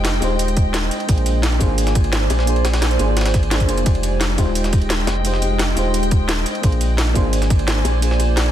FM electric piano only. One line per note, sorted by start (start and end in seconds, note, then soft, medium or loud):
0.00 0.20 G#3 medium
0.00 0.21 D#4 medium
0.00 0.22 F4 medium
0.00 0.23 G4 medium
0.00 0.24 C5 loud
0.20 1.06 G#3 medium
0.20 1.06 D#4 medium
0.20 1.07 F4 medium
0.20 1.07 G4 medium
0.20 1.08 C5 loud
1.07 1.58 A#3 medium
1.07 1.58 D4 medium
1.07 1.59 F4 medium
1.07 1.59 G#4 medium
1.07 1.60 C5 medium
1.59 2.44 A#3 loud
1.59 2.45 D4 medium
1.59 2.45 F4 medium
1.59 2.46 G#4 medium
1.59 2.46 C5 loud
2.46 2.96 A#3 medium
2.46 2.97 D4 medium
2.46 2.97 F4 medium
2.46 2.98 G#4 medium
2.46 2.98 C5 medium
2.98 3.49 A#3 medium
2.98 3.49 D4 medium
2.98 3.50 F4 medium
2.98 3.50 G#4 medium
2.98 3.51 C5 loud
3.50 3.66 A#3 medium
3.50 3.66 D4 medium
3.50 3.67 F4 medium
3.50 3.67 G#4 medium
3.50 3.67 C5 medium
3.68 3.84 A#3 medium
3.68 3.84 D4 medium
3.68 3.84 F4 medium
3.68 3.84 G#4 medium
3.68 3.85 C5 medium
3.84 4.35 G#3 medium
3.84 4.36 D#4 medium
3.84 4.36 F4 medium
3.84 4.37 G4 medium
3.84 4.37 C5 medium
4.36 5.22 G#3 medium
4.36 5.22 D#4 medium
4.36 5.23 F4 medium
4.36 5.23 G4 medium
4.36 5.24 C5 loud
5.23 5.74 G#3 medium
5.23 5.74 D#4 medium
5.23 5.75 F4 medium
5.23 5.75 G4 medium
5.23 5.76 C5 medium
5.75 6.61 G#3 medium
5.75 6.61 D#4 medium
5.75 6.62 F4 medium
5.75 6.62 G4 medium
5.75 6.62 C5 loud
6.62 7.13 A#3 medium
6.62 7.13 D4 medium
6.62 7.14 F4 medium
6.62 7.14 G#4 medium
6.62 7.14 C5 medium
7.14 7.99 A#3 loud
7.14 8.00 D4 medium
7.14 8.00 F4 medium
7.14 8.01 G#4 medium
7.14 8.01 C5 loud
8.01 8.51 A#3 medium
8.01 8.52 D4 medium
8.01 8.52 F4 medium
8.01 8.52 G#4 medium
8.01 8.52 C5 medium